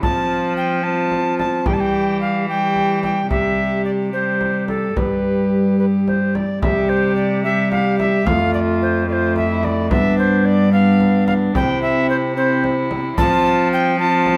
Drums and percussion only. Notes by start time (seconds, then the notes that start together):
0.03 frame drum
1.11 frame drum
1.39 frame drum
1.66 frame drum
2.76 frame drum
3.03 frame drum
3.31 frame drum
4.41 frame drum
4.68 frame drum
4.97 frame drum
6.08 frame drum
6.35 frame drum
6.62 frame drum
7.72 frame drum
8.00 frame drum
8.27 frame drum
9.36 frame drum
9.63 frame drum
9.91 frame drum
11.00 frame drum
11.28 frame drum
11.55 frame drum
12.64 frame drum
12.91 frame drum
13.18 frame drum
14.26 frame drum